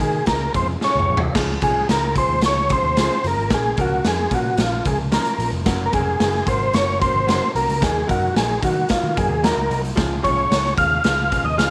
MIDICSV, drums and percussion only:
0, 0, Header, 1, 2, 480
1, 0, Start_track
1, 0, Key_signature, -5, "major"
1, 0, Tempo, 538600
1, 1204, Time_signature, 4, 2, 24, 8
1, 10429, End_track
2, 0, Start_track
2, 0, Title_t, "Drums"
2, 0, Note_on_c, 9, 36, 103
2, 5, Note_on_c, 9, 42, 97
2, 86, Note_off_c, 9, 36, 0
2, 94, Note_off_c, 9, 42, 0
2, 234, Note_on_c, 9, 42, 90
2, 242, Note_on_c, 9, 36, 87
2, 242, Note_on_c, 9, 38, 121
2, 323, Note_off_c, 9, 42, 0
2, 331, Note_off_c, 9, 36, 0
2, 331, Note_off_c, 9, 38, 0
2, 485, Note_on_c, 9, 36, 100
2, 485, Note_on_c, 9, 42, 79
2, 574, Note_off_c, 9, 36, 0
2, 574, Note_off_c, 9, 42, 0
2, 724, Note_on_c, 9, 38, 59
2, 814, Note_off_c, 9, 38, 0
2, 886, Note_on_c, 9, 45, 75
2, 975, Note_off_c, 9, 45, 0
2, 1045, Note_on_c, 9, 43, 120
2, 1134, Note_off_c, 9, 43, 0
2, 1203, Note_on_c, 9, 36, 102
2, 1203, Note_on_c, 9, 49, 104
2, 1205, Note_on_c, 9, 38, 105
2, 1292, Note_off_c, 9, 49, 0
2, 1293, Note_off_c, 9, 36, 0
2, 1294, Note_off_c, 9, 38, 0
2, 1440, Note_on_c, 9, 42, 83
2, 1445, Note_on_c, 9, 36, 99
2, 1530, Note_off_c, 9, 42, 0
2, 1534, Note_off_c, 9, 36, 0
2, 1686, Note_on_c, 9, 38, 127
2, 1687, Note_on_c, 9, 42, 98
2, 1775, Note_off_c, 9, 38, 0
2, 1776, Note_off_c, 9, 42, 0
2, 1922, Note_on_c, 9, 36, 94
2, 1925, Note_on_c, 9, 42, 95
2, 2011, Note_off_c, 9, 36, 0
2, 2014, Note_off_c, 9, 42, 0
2, 2152, Note_on_c, 9, 42, 97
2, 2160, Note_on_c, 9, 38, 120
2, 2241, Note_off_c, 9, 42, 0
2, 2249, Note_off_c, 9, 38, 0
2, 2401, Note_on_c, 9, 42, 79
2, 2408, Note_on_c, 9, 36, 108
2, 2490, Note_off_c, 9, 42, 0
2, 2497, Note_off_c, 9, 36, 0
2, 2645, Note_on_c, 9, 42, 96
2, 2649, Note_on_c, 9, 38, 104
2, 2734, Note_off_c, 9, 42, 0
2, 2738, Note_off_c, 9, 38, 0
2, 2889, Note_on_c, 9, 42, 74
2, 2978, Note_off_c, 9, 42, 0
2, 3122, Note_on_c, 9, 42, 81
2, 3123, Note_on_c, 9, 38, 115
2, 3125, Note_on_c, 9, 36, 108
2, 3211, Note_off_c, 9, 42, 0
2, 3212, Note_off_c, 9, 38, 0
2, 3214, Note_off_c, 9, 36, 0
2, 3360, Note_on_c, 9, 42, 87
2, 3367, Note_on_c, 9, 36, 96
2, 3449, Note_off_c, 9, 42, 0
2, 3456, Note_off_c, 9, 36, 0
2, 3606, Note_on_c, 9, 38, 125
2, 3607, Note_on_c, 9, 42, 96
2, 3695, Note_off_c, 9, 38, 0
2, 3696, Note_off_c, 9, 42, 0
2, 3842, Note_on_c, 9, 36, 101
2, 3845, Note_on_c, 9, 42, 83
2, 3931, Note_off_c, 9, 36, 0
2, 3934, Note_off_c, 9, 42, 0
2, 4077, Note_on_c, 9, 42, 98
2, 4085, Note_on_c, 9, 38, 127
2, 4166, Note_off_c, 9, 42, 0
2, 4174, Note_off_c, 9, 38, 0
2, 4324, Note_on_c, 9, 42, 88
2, 4327, Note_on_c, 9, 36, 101
2, 4413, Note_off_c, 9, 42, 0
2, 4417, Note_off_c, 9, 36, 0
2, 4562, Note_on_c, 9, 42, 88
2, 4566, Note_on_c, 9, 38, 100
2, 4651, Note_off_c, 9, 42, 0
2, 4655, Note_off_c, 9, 38, 0
2, 4680, Note_on_c, 9, 42, 56
2, 4769, Note_off_c, 9, 42, 0
2, 4810, Note_on_c, 9, 42, 81
2, 4899, Note_off_c, 9, 42, 0
2, 5044, Note_on_c, 9, 36, 121
2, 5045, Note_on_c, 9, 42, 91
2, 5046, Note_on_c, 9, 38, 120
2, 5133, Note_off_c, 9, 36, 0
2, 5134, Note_off_c, 9, 42, 0
2, 5136, Note_off_c, 9, 38, 0
2, 5283, Note_on_c, 9, 42, 89
2, 5287, Note_on_c, 9, 36, 101
2, 5372, Note_off_c, 9, 42, 0
2, 5376, Note_off_c, 9, 36, 0
2, 5527, Note_on_c, 9, 38, 113
2, 5528, Note_on_c, 9, 42, 89
2, 5617, Note_off_c, 9, 38, 0
2, 5617, Note_off_c, 9, 42, 0
2, 5654, Note_on_c, 9, 38, 38
2, 5743, Note_off_c, 9, 38, 0
2, 5764, Note_on_c, 9, 36, 96
2, 5771, Note_on_c, 9, 42, 87
2, 5853, Note_off_c, 9, 36, 0
2, 5860, Note_off_c, 9, 42, 0
2, 6002, Note_on_c, 9, 42, 85
2, 6010, Note_on_c, 9, 38, 111
2, 6091, Note_off_c, 9, 42, 0
2, 6099, Note_off_c, 9, 38, 0
2, 6253, Note_on_c, 9, 36, 106
2, 6254, Note_on_c, 9, 42, 92
2, 6342, Note_off_c, 9, 36, 0
2, 6343, Note_off_c, 9, 42, 0
2, 6492, Note_on_c, 9, 42, 100
2, 6496, Note_on_c, 9, 38, 120
2, 6581, Note_off_c, 9, 42, 0
2, 6585, Note_off_c, 9, 38, 0
2, 6734, Note_on_c, 9, 42, 84
2, 6823, Note_off_c, 9, 42, 0
2, 6858, Note_on_c, 9, 42, 62
2, 6947, Note_off_c, 9, 42, 0
2, 6970, Note_on_c, 9, 36, 115
2, 6974, Note_on_c, 9, 42, 88
2, 6975, Note_on_c, 9, 38, 101
2, 7060, Note_off_c, 9, 36, 0
2, 7063, Note_off_c, 9, 42, 0
2, 7064, Note_off_c, 9, 38, 0
2, 7212, Note_on_c, 9, 36, 95
2, 7212, Note_on_c, 9, 42, 80
2, 7301, Note_off_c, 9, 36, 0
2, 7301, Note_off_c, 9, 42, 0
2, 7455, Note_on_c, 9, 38, 120
2, 7455, Note_on_c, 9, 42, 107
2, 7544, Note_off_c, 9, 38, 0
2, 7544, Note_off_c, 9, 42, 0
2, 7687, Note_on_c, 9, 36, 102
2, 7691, Note_on_c, 9, 42, 97
2, 7776, Note_off_c, 9, 36, 0
2, 7780, Note_off_c, 9, 42, 0
2, 7922, Note_on_c, 9, 42, 102
2, 7930, Note_on_c, 9, 38, 121
2, 7933, Note_on_c, 9, 36, 92
2, 8011, Note_off_c, 9, 42, 0
2, 8019, Note_off_c, 9, 38, 0
2, 8022, Note_off_c, 9, 36, 0
2, 8175, Note_on_c, 9, 36, 107
2, 8175, Note_on_c, 9, 42, 83
2, 8264, Note_off_c, 9, 36, 0
2, 8264, Note_off_c, 9, 42, 0
2, 8412, Note_on_c, 9, 42, 92
2, 8416, Note_on_c, 9, 38, 116
2, 8501, Note_off_c, 9, 42, 0
2, 8505, Note_off_c, 9, 38, 0
2, 8654, Note_on_c, 9, 42, 79
2, 8743, Note_off_c, 9, 42, 0
2, 8774, Note_on_c, 9, 42, 61
2, 8863, Note_off_c, 9, 42, 0
2, 8889, Note_on_c, 9, 36, 119
2, 8890, Note_on_c, 9, 42, 87
2, 8891, Note_on_c, 9, 38, 112
2, 8978, Note_off_c, 9, 36, 0
2, 8979, Note_off_c, 9, 42, 0
2, 8981, Note_off_c, 9, 38, 0
2, 9130, Note_on_c, 9, 36, 84
2, 9131, Note_on_c, 9, 42, 85
2, 9219, Note_off_c, 9, 36, 0
2, 9220, Note_off_c, 9, 42, 0
2, 9373, Note_on_c, 9, 38, 122
2, 9374, Note_on_c, 9, 42, 96
2, 9462, Note_off_c, 9, 38, 0
2, 9463, Note_off_c, 9, 42, 0
2, 9497, Note_on_c, 9, 38, 35
2, 9586, Note_off_c, 9, 38, 0
2, 9603, Note_on_c, 9, 36, 99
2, 9609, Note_on_c, 9, 42, 87
2, 9692, Note_off_c, 9, 36, 0
2, 9699, Note_off_c, 9, 42, 0
2, 9839, Note_on_c, 9, 42, 103
2, 9847, Note_on_c, 9, 38, 125
2, 9928, Note_off_c, 9, 42, 0
2, 9936, Note_off_c, 9, 38, 0
2, 10089, Note_on_c, 9, 36, 96
2, 10090, Note_on_c, 9, 42, 86
2, 10178, Note_off_c, 9, 36, 0
2, 10179, Note_off_c, 9, 42, 0
2, 10328, Note_on_c, 9, 42, 98
2, 10332, Note_on_c, 9, 38, 103
2, 10417, Note_off_c, 9, 42, 0
2, 10421, Note_off_c, 9, 38, 0
2, 10429, End_track
0, 0, End_of_file